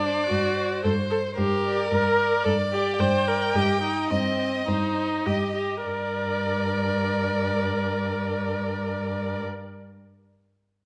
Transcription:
Already playing: G2 D4 D5
0.03 C5
0.30 G2 F#4
0.57 C5
0.84 G2 A4 C5
1.10 A4 C5
1.38 G2 G4 A#4
1.65 D5
1.91 G2 A#4
2.18 D5
2.44 G2 A4 D5
2.72 G4 D5
2.99 G2 C5 G5
3.28 A#4 D5
3.55 G2 G4 D#5
3.83 D#4 D#5
4.11 G2 C4 D#5
4.39 D#5
4.68 G2 D#4 C5
4.97 D#5
5.26 G2 G4 D#5
5.56 G4 D#5
5.86 G2 A#4 D5

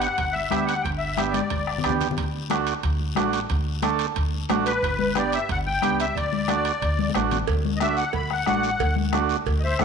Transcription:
0.00 F#5, high timbale, short guiro
0.18 G1, bombo low, high timbale, long guiro
0.33 E5, high conga
0.50 D2 B3 D4 G4, bombo rim, high conga, high timbale, short guiro
0.66 F#5, high timbale, short guiro
0.82 G1 G5, bombo low, high conga, high timbale, long guiro
0.98 E5
1.17 B3 D4 G4, bombo rim, high conga, high timbale, short guiro
1.31 D5, high conga, high timbale, short guiro
1.50 G1, bombo low, high timbale, long guiro
1.67 bombo rim
1.78 low conga
1.84 D2 B3 D4 G4, bombo rim, high timbale, short guiro
1.90 low conga
2.01 low conga, high timbale, short guiro
2.11 low conga
2.17 D2, bombo low, high conga, high timbale, long guiro
2.50 A3 D4 F#4, bombo rim, high conga, high timbale, short guiro
2.67 high timbale, short guiro
2.83 D2, bombo low, high timbale, long guiro
3.00 high conga
3.15 A1 A3 D4 F#4, bombo rim, high conga, high timbale, low timbale, short guiro
3.33 high timbale, short guiro
3.50 D2, bombo low, high conga, high timbale, long guiro
3.82 A3 D4 A4, bombo rim, high conga, high timbale, short guiro
3.99 high timbale, short guiro
4.16 D2, bombo low, high timbale, long guiro
4.34 high conga
4.49 A1 A3 D4 F#4, bombo rim, high conga, high timbale, low timbale, short guiro
4.66 B4, high timbale, short guiro
4.82 G1, bombo low, high conga, high timbale, long guiro
4.99 high conga
5.15 B3 D4 G4 D5, bombo rim, high conga, high timbale, short guiro
5.32 E5, high timbale, short guiro
5.49 G1 F#5, bombo low, high timbale, long guiro
5.66 G5, high conga
5.82 C#2 B3 D4 G4, bombo rim, high conga, high timbale, short guiro
6.00 E5, high timbale, short guiro
6.15 D2 D5, bombo low, high conga, high timbale, long guiro
6.33 high conga
6.48 A3 D4 F#4, bombo rim, high conga, high timbale, short guiro
6.65 high timbale, short guiro
6.82 D2, bombo low, high timbale, long guiro
6.99 high conga
7.10 high conga
7.14 A1 A3 D4 F#4, bombo rim, high timbale, low timbale, short guiro
7.31 low conga, high timbale, short guiro
7.47 D2, bombo low, cowbell, high conga, long guiro
7.65 high conga
7.76 D#5 E5, bombo rim
7.81 A3 D4 F#4, high conga, short guiro
7.97 F#5, short guiro
8.13 D2 B5, bombo low, cowbell, long guiro
8.30 F#5, bombo rim, high conga
8.46 A1 A3 D4 F#4, bombo rim, high conga, short guiro
8.63 short guiro
8.79 D2, bombo low, cowbell, high conga, long guiro
8.96 high conga
9.13 A3 D4 F#4, bombo rim, high conga, short guiro
9.29 short guiro
9.46 D2, bombo low, cowbell, long guiro
9.60 C5 D#5, high conga
9.64 E5
9.79 A1 A3 D4 E4 A4 F#5, bombo low, bombo rim, high conga, low conga, low timbale, short guiro

